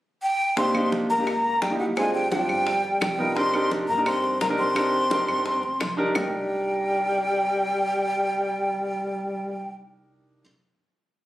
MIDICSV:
0, 0, Header, 1, 6, 480
1, 0, Start_track
1, 0, Key_signature, -3, "minor"
1, 0, Tempo, 349447
1, 786, Time_signature, 4, 2, 24, 8
1, 15453, End_track
2, 0, Start_track
2, 0, Title_t, "Flute"
2, 0, Program_c, 0, 73
2, 308, Note_on_c, 0, 79, 93
2, 754, Note_off_c, 0, 79, 0
2, 789, Note_on_c, 0, 84, 93
2, 1234, Note_off_c, 0, 84, 0
2, 1506, Note_on_c, 0, 82, 91
2, 2224, Note_on_c, 0, 79, 84
2, 2245, Note_off_c, 0, 82, 0
2, 2450, Note_off_c, 0, 79, 0
2, 2459, Note_on_c, 0, 78, 86
2, 2541, Note_off_c, 0, 78, 0
2, 2702, Note_on_c, 0, 80, 81
2, 2928, Note_off_c, 0, 80, 0
2, 2937, Note_on_c, 0, 79, 78
2, 3165, Note_off_c, 0, 79, 0
2, 3177, Note_on_c, 0, 79, 96
2, 4086, Note_off_c, 0, 79, 0
2, 4134, Note_on_c, 0, 79, 88
2, 4613, Note_on_c, 0, 84, 102
2, 4633, Note_off_c, 0, 79, 0
2, 5099, Note_off_c, 0, 84, 0
2, 5330, Note_on_c, 0, 82, 90
2, 5560, Note_off_c, 0, 82, 0
2, 5575, Note_on_c, 0, 84, 88
2, 6025, Note_off_c, 0, 84, 0
2, 6053, Note_on_c, 0, 82, 86
2, 6136, Note_off_c, 0, 82, 0
2, 6297, Note_on_c, 0, 84, 99
2, 8162, Note_off_c, 0, 84, 0
2, 8452, Note_on_c, 0, 79, 80
2, 13340, Note_off_c, 0, 79, 0
2, 15453, End_track
3, 0, Start_track
3, 0, Title_t, "Grand piano"
3, 0, Program_c, 1, 0
3, 778, Note_on_c, 1, 58, 76
3, 787, Note_on_c, 1, 62, 70
3, 794, Note_on_c, 1, 63, 65
3, 798, Note_on_c, 1, 67, 82
3, 950, Note_off_c, 1, 58, 0
3, 955, Note_off_c, 1, 62, 0
3, 958, Note_off_c, 1, 63, 0
3, 960, Note_off_c, 1, 67, 0
3, 1019, Note_on_c, 1, 58, 86
3, 1027, Note_on_c, 1, 62, 78
3, 1035, Note_on_c, 1, 63, 79
3, 1042, Note_on_c, 1, 67, 90
3, 1443, Note_off_c, 1, 58, 0
3, 1447, Note_off_c, 1, 62, 0
3, 1451, Note_off_c, 1, 63, 0
3, 1455, Note_off_c, 1, 67, 0
3, 1625, Note_on_c, 1, 58, 72
3, 1631, Note_on_c, 1, 62, 66
3, 1640, Note_on_c, 1, 63, 60
3, 1644, Note_on_c, 1, 67, 84
3, 1746, Note_off_c, 1, 58, 0
3, 1749, Note_off_c, 1, 62, 0
3, 1753, Note_off_c, 1, 63, 0
3, 1755, Note_off_c, 1, 67, 0
3, 2339, Note_on_c, 1, 58, 71
3, 2346, Note_on_c, 1, 63, 71
3, 2351, Note_on_c, 1, 64, 68
3, 2357, Note_on_c, 1, 67, 78
3, 2595, Note_off_c, 1, 58, 0
3, 2598, Note_off_c, 1, 63, 0
3, 2601, Note_off_c, 1, 64, 0
3, 2604, Note_off_c, 1, 67, 0
3, 2706, Note_on_c, 1, 60, 75
3, 2710, Note_on_c, 1, 62, 64
3, 2715, Note_on_c, 1, 65, 71
3, 2723, Note_on_c, 1, 68, 85
3, 3042, Note_off_c, 1, 60, 0
3, 3045, Note_off_c, 1, 62, 0
3, 3047, Note_off_c, 1, 65, 0
3, 3051, Note_off_c, 1, 68, 0
3, 3177, Note_on_c, 1, 60, 65
3, 3186, Note_on_c, 1, 62, 73
3, 3189, Note_on_c, 1, 65, 67
3, 3196, Note_on_c, 1, 72, 80
3, 3662, Note_off_c, 1, 60, 0
3, 3666, Note_off_c, 1, 62, 0
3, 3668, Note_off_c, 1, 65, 0
3, 3671, Note_off_c, 1, 72, 0
3, 4372, Note_on_c, 1, 59, 76
3, 4380, Note_on_c, 1, 63, 73
3, 4389, Note_on_c, 1, 65, 60
3, 4396, Note_on_c, 1, 70, 81
3, 4547, Note_off_c, 1, 59, 0
3, 4551, Note_off_c, 1, 63, 0
3, 4555, Note_off_c, 1, 65, 0
3, 4559, Note_off_c, 1, 70, 0
3, 4614, Note_on_c, 1, 62, 80
3, 4618, Note_on_c, 1, 63, 72
3, 4628, Note_on_c, 1, 67, 73
3, 4636, Note_on_c, 1, 70, 84
3, 4788, Note_off_c, 1, 62, 0
3, 4790, Note_off_c, 1, 63, 0
3, 4795, Note_off_c, 1, 67, 0
3, 4799, Note_off_c, 1, 70, 0
3, 4854, Note_on_c, 1, 62, 84
3, 4861, Note_on_c, 1, 63, 83
3, 4867, Note_on_c, 1, 67, 84
3, 4877, Note_on_c, 1, 70, 89
3, 5279, Note_off_c, 1, 62, 0
3, 5282, Note_off_c, 1, 63, 0
3, 5286, Note_off_c, 1, 67, 0
3, 5290, Note_off_c, 1, 70, 0
3, 5453, Note_on_c, 1, 62, 72
3, 5462, Note_on_c, 1, 63, 67
3, 5468, Note_on_c, 1, 67, 62
3, 5474, Note_on_c, 1, 70, 79
3, 5962, Note_off_c, 1, 62, 0
3, 5967, Note_off_c, 1, 63, 0
3, 5969, Note_off_c, 1, 67, 0
3, 5973, Note_off_c, 1, 70, 0
3, 6168, Note_on_c, 1, 62, 83
3, 6174, Note_on_c, 1, 63, 67
3, 6179, Note_on_c, 1, 67, 71
3, 6187, Note_on_c, 1, 70, 93
3, 6427, Note_off_c, 1, 62, 0
3, 6430, Note_off_c, 1, 63, 0
3, 6433, Note_off_c, 1, 67, 0
3, 6437, Note_off_c, 1, 70, 0
3, 6520, Note_on_c, 1, 62, 81
3, 6529, Note_on_c, 1, 63, 68
3, 6534, Note_on_c, 1, 67, 73
3, 6542, Note_on_c, 1, 70, 82
3, 6867, Note_off_c, 1, 62, 0
3, 6871, Note_off_c, 1, 63, 0
3, 6874, Note_off_c, 1, 67, 0
3, 6878, Note_off_c, 1, 70, 0
3, 7005, Note_on_c, 1, 62, 83
3, 7010, Note_on_c, 1, 63, 78
3, 7020, Note_on_c, 1, 67, 75
3, 7023, Note_on_c, 1, 70, 95
3, 7684, Note_off_c, 1, 62, 0
3, 7686, Note_off_c, 1, 63, 0
3, 7691, Note_off_c, 1, 67, 0
3, 7693, Note_off_c, 1, 70, 0
3, 8200, Note_on_c, 1, 62, 90
3, 8205, Note_on_c, 1, 63, 70
3, 8213, Note_on_c, 1, 67, 79
3, 8220, Note_on_c, 1, 70, 96
3, 8378, Note_off_c, 1, 62, 0
3, 8380, Note_off_c, 1, 63, 0
3, 8384, Note_off_c, 1, 67, 0
3, 8388, Note_off_c, 1, 70, 0
3, 8413, Note_on_c, 1, 62, 67
3, 8441, Note_on_c, 1, 63, 65
3, 8469, Note_on_c, 1, 67, 69
3, 8497, Note_on_c, 1, 70, 84
3, 14282, Note_off_c, 1, 62, 0
3, 14296, Note_off_c, 1, 63, 0
3, 14310, Note_off_c, 1, 67, 0
3, 14324, Note_off_c, 1, 70, 0
3, 15453, End_track
4, 0, Start_track
4, 0, Title_t, "Tenor saxophone"
4, 0, Program_c, 2, 66
4, 794, Note_on_c, 2, 60, 86
4, 1237, Note_off_c, 2, 60, 0
4, 1518, Note_on_c, 2, 58, 75
4, 2223, Note_on_c, 2, 55, 71
4, 2244, Note_off_c, 2, 58, 0
4, 2459, Note_off_c, 2, 55, 0
4, 2467, Note_on_c, 2, 54, 73
4, 2575, Note_off_c, 2, 54, 0
4, 2700, Note_on_c, 2, 56, 74
4, 2926, Note_off_c, 2, 56, 0
4, 2942, Note_on_c, 2, 55, 70
4, 3167, Note_off_c, 2, 55, 0
4, 3188, Note_on_c, 2, 55, 76
4, 4092, Note_off_c, 2, 55, 0
4, 4131, Note_on_c, 2, 55, 72
4, 4608, Note_on_c, 2, 60, 74
4, 4628, Note_off_c, 2, 55, 0
4, 5096, Note_off_c, 2, 60, 0
4, 5340, Note_on_c, 2, 58, 73
4, 5565, Note_off_c, 2, 58, 0
4, 5581, Note_on_c, 2, 60, 78
4, 6028, Note_off_c, 2, 60, 0
4, 6068, Note_on_c, 2, 58, 68
4, 6175, Note_off_c, 2, 58, 0
4, 6299, Note_on_c, 2, 60, 80
4, 8163, Note_off_c, 2, 60, 0
4, 8459, Note_on_c, 2, 55, 80
4, 13343, Note_off_c, 2, 55, 0
4, 15453, End_track
5, 0, Start_track
5, 0, Title_t, "Upright bass"
5, 0, Program_c, 3, 32
5, 790, Note_on_c, 3, 36, 88
5, 1458, Note_off_c, 3, 36, 0
5, 1512, Note_on_c, 3, 37, 86
5, 2180, Note_off_c, 3, 37, 0
5, 2230, Note_on_c, 3, 38, 99
5, 3350, Note_off_c, 3, 38, 0
5, 3425, Note_on_c, 3, 31, 83
5, 4095, Note_off_c, 3, 31, 0
5, 4143, Note_on_c, 3, 36, 90
5, 5264, Note_off_c, 3, 36, 0
5, 5342, Note_on_c, 3, 43, 85
5, 6012, Note_off_c, 3, 43, 0
5, 6061, Note_on_c, 3, 36, 93
5, 7181, Note_off_c, 3, 36, 0
5, 7258, Note_on_c, 3, 43, 78
5, 7705, Note_off_c, 3, 43, 0
5, 7744, Note_on_c, 3, 38, 69
5, 7965, Note_off_c, 3, 38, 0
5, 7980, Note_on_c, 3, 36, 96
5, 8404, Note_off_c, 3, 36, 0
5, 8455, Note_on_c, 3, 36, 82
5, 14303, Note_off_c, 3, 36, 0
5, 15453, End_track
6, 0, Start_track
6, 0, Title_t, "Drums"
6, 783, Note_on_c, 9, 60, 68
6, 791, Note_on_c, 9, 63, 29
6, 921, Note_off_c, 9, 60, 0
6, 929, Note_off_c, 9, 63, 0
6, 1022, Note_on_c, 9, 60, 35
6, 1026, Note_on_c, 9, 75, 66
6, 1029, Note_on_c, 9, 63, 32
6, 1160, Note_off_c, 9, 60, 0
6, 1163, Note_off_c, 9, 75, 0
6, 1166, Note_off_c, 9, 63, 0
6, 1267, Note_on_c, 9, 60, 55
6, 1268, Note_on_c, 9, 63, 93
6, 1404, Note_off_c, 9, 60, 0
6, 1406, Note_off_c, 9, 63, 0
6, 1744, Note_on_c, 9, 60, 61
6, 1746, Note_on_c, 9, 63, 31
6, 1748, Note_on_c, 9, 75, 60
6, 1882, Note_off_c, 9, 60, 0
6, 1884, Note_off_c, 9, 63, 0
6, 1885, Note_off_c, 9, 75, 0
6, 1984, Note_on_c, 9, 60, 34
6, 1987, Note_on_c, 9, 63, 32
6, 2121, Note_off_c, 9, 60, 0
6, 2125, Note_off_c, 9, 63, 0
6, 2224, Note_on_c, 9, 60, 66
6, 2224, Note_on_c, 9, 61, 87
6, 2226, Note_on_c, 9, 63, 35
6, 2361, Note_off_c, 9, 60, 0
6, 2361, Note_off_c, 9, 61, 0
6, 2363, Note_off_c, 9, 63, 0
6, 2467, Note_on_c, 9, 60, 29
6, 2605, Note_off_c, 9, 60, 0
6, 2704, Note_on_c, 9, 63, 35
6, 2706, Note_on_c, 9, 60, 64
6, 2707, Note_on_c, 9, 75, 64
6, 2842, Note_off_c, 9, 63, 0
6, 2844, Note_off_c, 9, 60, 0
6, 2845, Note_off_c, 9, 75, 0
6, 2945, Note_on_c, 9, 63, 30
6, 2948, Note_on_c, 9, 60, 28
6, 3082, Note_off_c, 9, 63, 0
6, 3085, Note_off_c, 9, 60, 0
6, 3180, Note_on_c, 9, 63, 96
6, 3187, Note_on_c, 9, 60, 53
6, 3317, Note_off_c, 9, 63, 0
6, 3324, Note_off_c, 9, 60, 0
6, 3421, Note_on_c, 9, 63, 31
6, 3422, Note_on_c, 9, 75, 65
6, 3425, Note_on_c, 9, 60, 31
6, 3559, Note_off_c, 9, 63, 0
6, 3560, Note_off_c, 9, 75, 0
6, 3562, Note_off_c, 9, 60, 0
6, 3661, Note_on_c, 9, 63, 31
6, 3662, Note_on_c, 9, 60, 66
6, 3798, Note_off_c, 9, 63, 0
6, 3800, Note_off_c, 9, 60, 0
6, 3905, Note_on_c, 9, 63, 30
6, 3906, Note_on_c, 9, 60, 33
6, 4043, Note_off_c, 9, 60, 0
6, 4043, Note_off_c, 9, 63, 0
6, 4139, Note_on_c, 9, 75, 68
6, 4142, Note_on_c, 9, 63, 88
6, 4145, Note_on_c, 9, 60, 75
6, 4145, Note_on_c, 9, 61, 88
6, 4276, Note_off_c, 9, 75, 0
6, 4279, Note_off_c, 9, 63, 0
6, 4282, Note_off_c, 9, 60, 0
6, 4282, Note_off_c, 9, 61, 0
6, 4623, Note_on_c, 9, 60, 65
6, 4627, Note_on_c, 9, 63, 34
6, 4761, Note_off_c, 9, 60, 0
6, 4764, Note_off_c, 9, 63, 0
6, 4858, Note_on_c, 9, 75, 60
6, 4861, Note_on_c, 9, 60, 33
6, 4864, Note_on_c, 9, 63, 29
6, 4995, Note_off_c, 9, 75, 0
6, 4999, Note_off_c, 9, 60, 0
6, 5001, Note_off_c, 9, 63, 0
6, 5101, Note_on_c, 9, 60, 56
6, 5104, Note_on_c, 9, 63, 88
6, 5239, Note_off_c, 9, 60, 0
6, 5242, Note_off_c, 9, 63, 0
6, 5579, Note_on_c, 9, 60, 61
6, 5583, Note_on_c, 9, 63, 29
6, 5583, Note_on_c, 9, 75, 70
6, 5716, Note_off_c, 9, 60, 0
6, 5720, Note_off_c, 9, 63, 0
6, 5720, Note_off_c, 9, 75, 0
6, 5821, Note_on_c, 9, 60, 36
6, 5828, Note_on_c, 9, 63, 30
6, 5958, Note_off_c, 9, 60, 0
6, 5965, Note_off_c, 9, 63, 0
6, 6060, Note_on_c, 9, 60, 73
6, 6060, Note_on_c, 9, 61, 78
6, 6071, Note_on_c, 9, 63, 36
6, 6197, Note_off_c, 9, 60, 0
6, 6197, Note_off_c, 9, 61, 0
6, 6208, Note_off_c, 9, 63, 0
6, 6302, Note_on_c, 9, 60, 33
6, 6440, Note_off_c, 9, 60, 0
6, 6539, Note_on_c, 9, 60, 62
6, 6540, Note_on_c, 9, 75, 66
6, 6549, Note_on_c, 9, 63, 34
6, 6677, Note_off_c, 9, 60, 0
6, 6678, Note_off_c, 9, 75, 0
6, 6686, Note_off_c, 9, 63, 0
6, 6784, Note_on_c, 9, 60, 33
6, 6786, Note_on_c, 9, 63, 33
6, 6921, Note_off_c, 9, 60, 0
6, 6924, Note_off_c, 9, 63, 0
6, 7021, Note_on_c, 9, 60, 66
6, 7022, Note_on_c, 9, 63, 97
6, 7158, Note_off_c, 9, 60, 0
6, 7159, Note_off_c, 9, 63, 0
6, 7257, Note_on_c, 9, 60, 37
6, 7260, Note_on_c, 9, 75, 67
6, 7261, Note_on_c, 9, 63, 33
6, 7394, Note_off_c, 9, 60, 0
6, 7397, Note_off_c, 9, 75, 0
6, 7398, Note_off_c, 9, 63, 0
6, 7495, Note_on_c, 9, 60, 61
6, 7500, Note_on_c, 9, 63, 30
6, 7632, Note_off_c, 9, 60, 0
6, 7637, Note_off_c, 9, 63, 0
6, 7735, Note_on_c, 9, 60, 33
6, 7737, Note_on_c, 9, 63, 33
6, 7872, Note_off_c, 9, 60, 0
6, 7874, Note_off_c, 9, 63, 0
6, 7972, Note_on_c, 9, 75, 63
6, 7977, Note_on_c, 9, 60, 67
6, 7977, Note_on_c, 9, 61, 81
6, 7977, Note_on_c, 9, 63, 91
6, 8109, Note_off_c, 9, 75, 0
6, 8114, Note_off_c, 9, 60, 0
6, 8114, Note_off_c, 9, 61, 0
6, 8114, Note_off_c, 9, 63, 0
6, 8450, Note_on_c, 9, 75, 87
6, 8456, Note_on_c, 9, 61, 93
6, 8457, Note_on_c, 9, 64, 103
6, 8587, Note_off_c, 9, 75, 0
6, 8593, Note_off_c, 9, 61, 0
6, 8595, Note_off_c, 9, 64, 0
6, 15453, End_track
0, 0, End_of_file